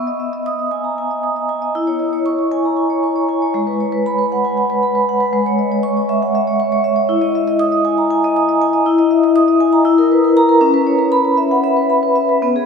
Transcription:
Already playing: B3
0.07 D#5
0.20 E5
0.33 D#5
0.46 D#6
0.59 D#5
0.71 G#5
0.84 A#5
0.98 G#5
1.11 D#5
1.23 D#6
1.36 D#5
1.49 G#5
1.62 D#5
1.75 E4
1.87 C#5
1.99 D#5
2.13 C#5
2.26 C#6
2.39 C#5
2.52 G#5
2.65 A#5
2.77 G#5
2.90 C#5
3.03 C#6
3.16 C#5
3.29 G#5
3.42 C#5
3.54 G#3
3.67 B4
3.80 C#5
3.92 B4
4.06 B5
4.18 B4
4.32 F#5
4.45 G#5
4.57 F#5
4.70 B4
4.83 B5
4.95 B4
5.09 F#5
5.21 B4
5.33 G#3
5.46 C#5
5.59 D#5
5.72 C#5
5.83 C#6
5.97 C#5
6.09 E5
6.22 F#5
6.35 E5
6.47 C#5
6.60 C#6
6.72 C#5
6.84 E5
6.96 C#5
7.09 E4
7.22 D#5
7.35 E5
7.48 D#5
7.59 D#6
7.72 D#5
7.85 G#5
7.98 A#5
8.11 G#5
8.24 D#5
8.36 D#6
8.49 D#5
8.62 G#5
8.73 D#5
8.86 E4
8.98 D#5
9.11 E5
9.23 D#5
9.36 D#6
9.48 D#5
9.60 G#5
9.73 A#5
9.85 E4
9.98 A#4
10.12 B4
10.24 A#4
10.37 A#5
10.49 A#4
10.61 C#4
10.74 B4
10.87 C#5
10.99 B4
11.12 B5
11.25 B4
11.37 E5
11.51 F#5
11.64 E5
11.77 B4
11.90 B5
12.03 B4
12.16 E5
12.29 B4
12.42 B3
12.56 G#4

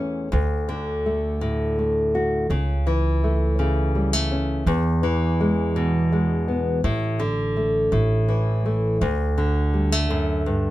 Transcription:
Already playing: E2 E3 A3 C#4
0.32 D2
0.69 D3
1.06 A3
1.41 A2
1.79 A3
2.15 F#4
2.50 C#2 C#3
2.87 E3
3.24 A3
3.59 C#3
3.95 G3
4.13 A3
4.32 C#4
4.66 E2
5.03 E3
5.40 G#3
5.76 B2
6.12 G#3
6.48 B3
6.84 A1 A2
7.20 D3
7.57 A3
7.92 A1 A2
8.29 E3
8.66 A3
9.01 D2
9.38 D3
9.74 G3
9.92 A3
10.10 F#2
10.46 G2

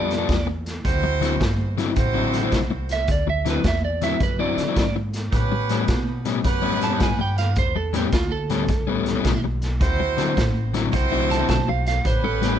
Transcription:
Already playing: F2 G3 B3 F4 A4 D5
0.11 snare, closed hi-hat
0.18 G3 B3 F4 A4
0.29 E2, kick, snare, closed hi-hat
0.47 muted overdriven electric guitar stroke
0.66 snare, closed hi-hat
0.84 D2 C4 E4 F#4 C5, kick, snare, closed hi-hat
1.03 muted overdriven electric guitar stroke
1.21 D3 F#3 C4 E4, snare, closed hi-hat
1.40 G1, muted overdriven electric guitar stroke, kick, snare, closed hi-hat
1.78 D3 F#3 C4 E4, snare, closed hi-hat
1.96 A1 C4 E4 F#4 C5, muted overdriven electric guitar stroke, kick, snare, closed hi-hat
2.14 D3 F#3 C4 E4
2.34 snare, closed hi-hat
2.43 D3 F#3 C4 E4
2.52 C2, kick, snare, closed hi-hat
2.70 muted overdriven electric guitar stroke
2.89 E5, snare, closed hi-hat
3.08 D2 D5, kick, snare, closed hi-hat
3.27 E5, muted overdriven electric guitar stroke
3.45 D3 F#3 C4 E4, snare, closed hi-hat
3.50 B4
3.64 E2 E5, muted overdriven electric guitar stroke, kick, snare, closed hi-hat
3.85 D5
4.02 D3 F#3 C4 E4 E5, snare, closed hi-hat
4.20 F#2 B4, muted overdriven electric guitar stroke, kick, snare, closed hi-hat
4.39 D3 F#3 C4 E4 D5
4.57 muted upright bass stroke, snare, closed hi-hat
4.68 D3 F#3 C4 E4
4.76 G#2, kick, snare, closed hi-hat
4.96 muted overdriven electric guitar stroke
5.14 snare, closed hi-hat
5.31 A2 B3 C#4 G4 B4, kick, snare, closed hi-hat
5.52 muted overdriven electric guitar stroke
5.69 A2 G3 B3 C#4, snare, closed hi-hat
5.88 B2, muted overdriven electric guitar stroke, kick, snare, closed hi-hat
6.25 A2 G3 B3 C#4, snare, closed hi-hat
6.44 F#2 B3 C#4 G4 B4, muted overdriven electric guitar stroke, kick, snare, closed hi-hat
6.62 A2 G3 B3 C#4
6.81 A5, snare, closed hi-hat
6.90 A2 G3 B3 C#4
7.00 G2 G#5, kick, snare, closed hi-hat
7.19 G5, muted overdriven electric guitar stroke
7.38 F5, snare, closed hi-hat
7.56 E2 C5, kick, snare, closed hi-hat
7.76 A4, muted overdriven electric guitar stroke
7.93 A2 G3 B3 C#4 G4, snare, closed hi-hat
8.12 D2 F4, muted overdriven electric guitar stroke, kick, snare, closed hi-hat
8.32 A4
8.50 A2 G3 B3 C#4, snare, closed hi-hat
8.68 C#2, muted overdriven electric guitar stroke, kick, snare, closed hi-hat
8.87 A2 G3 B3 C#4
9.06 snare, closed hi-hat
9.15 A2 G3 B3 C#4
9.25 B1, kick, snare, closed hi-hat
9.44 muted overdriven electric guitar stroke
9.62 snare, closed hi-hat
9.80 D2 C4 E4 F#4 C5, kick, snare, closed hi-hat
10.00 muted overdriven electric guitar stroke
10.17 D3 F#3 C4 E4, snare, closed hi-hat
10.37 A1, muted overdriven electric guitar stroke, kick, snare, closed hi-hat
10.74 D3 F#3 C4 E4, snare, closed hi-hat
10.92 C2 C4 E4 F#4 C5, muted overdriven electric guitar stroke, kick, snare, closed hi-hat
11.12 D3 F#3 C4 E4
11.31 A5, snare, closed hi-hat
11.39 D3 F#3 C4 E4
11.49 B1 A5, kick, snare, closed hi-hat
11.68 F5, muted overdriven electric guitar stroke
11.86 F5, snare, closed hi-hat
12.05 A1 B3 C#4 G4 B4 C5, kick, snare, closed hi-hat
12.24 A4, muted overdriven electric guitar stroke
12.42 A2 G3 B3 C#4 G4, snare, closed hi-hat

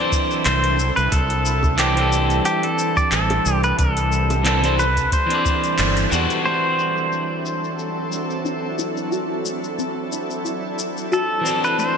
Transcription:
Already playing: E3 F#3 C4 D4 E4 A4 D5
0.00 D4 C5
0.12 kick, cabasa
0.31 cabasa
0.45 C2 C5, clap, closed hi-hat, cabasa
0.64 closed hi-hat
0.79 G3, cabasa
0.96 C2 B4, closed hi-hat, cabasa
1.12 C2 A4, kick, closed hi-hat, cabasa
1.30 closed hi-hat
1.46 cabasa
1.63 kick, high bongo, cabasa
1.77 E3 C4 D4 G4 A4, clap, closed hi-hat, cabasa
1.93 E3 C4, closed hi-hat
1.99 D4 A4
2.12 cabasa
2.30 closed hi-hat, cabasa
2.45 G4, closed hi-hat, cabasa
2.63 A4, closed hi-hat
2.79 cabasa
2.97 D5, kick, cabasa
3.12 A1 A4, clap, closed hi-hat, cabasa
3.30 closed hi-hat, high bongo
3.46 C2, cabasa
3.64 B4, closed hi-hat, cabasa
3.79 C2 A4, kick, closed hi-hat, cabasa
3.97 closed hi-hat, cabasa
4.12 cabasa
4.30 closed hi-hat, high bongo, cabasa
4.43 E3 C4 D4 A4, clap, closed hi-hat, cabasa
4.61 E3 C4 D4 C5, closed hi-hat, cabasa
4.79 B4, high bongo, cabasa
4.97 kick, closed hi-hat, cabasa
5.12 C5, kick, closed hi-hat, cabasa
5.26 E3 C4
5.30 D4 D5, closed hi-hat
5.45 kick, cabasa
5.64 closed hi-hat, cabasa
5.79 G1, clap, closed hi-hat, cabasa
5.97 closed hi-hat, cabasa
6.10 E2 E3 C4 D4 F#4, cabasa
6.30 closed hi-hat, cabasa
6.42 E3 F#3 A3 C4 D4 E4 A4 C5
6.46 D4 F#4, cabasa
6.79 cabasa
6.97 cabasa
7.12 C4, cabasa
7.46 cabasa
7.64 cabasa
7.79 cabasa
8.12 cabasa
8.30 cabasa
8.45 D4, cabasa
8.78 E4, cabasa
8.97 cabasa
9.11 F#4, cabasa
9.45 A3, cabasa
9.64 cabasa
9.78 C4, cabasa
10.12 D4, cabasa
10.30 cabasa
10.45 E4, cabasa
10.79 cabasa
10.97 cabasa
11.12 F#4 A4, cabasa
11.41 E3 C4
11.45 G3 D4 A4, cabasa
11.64 B4, cabasa
11.78 A3 C5, cabasa

